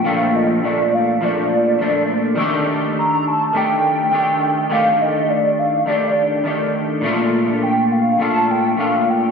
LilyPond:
<<
  \new Staff \with { instrumentName = "Soft synth lead" } { \time 4/4 \key bes \major \tempo 4 = 103 f''8 ees''8 d''8 f''8 d''4. r8 | r4 bes''8 a''8 g''2 | f''8 ees''8 d''8 f''8 d''4. r8 | r4 g''8 f''8 a''8 g''8 f''8 g''8 | }
  \new Staff \with { instrumentName = "Clean electric guitar" } { \time 4/4 \key bes \major <bes, f a d'>4 <bes, f a d'>4 <bes, f a d'>4 <bes, f a d'>4 | <ees a d' g'>2 <ees a d' g'>4 <ees a d' g'>4 | <ees a d' g'>2 <ees a d' g'>4 <ees a d' g'>4 | <bes, a d' f'>2 <bes, a d' f'>4 <bes, a d' f'>4 | }
>>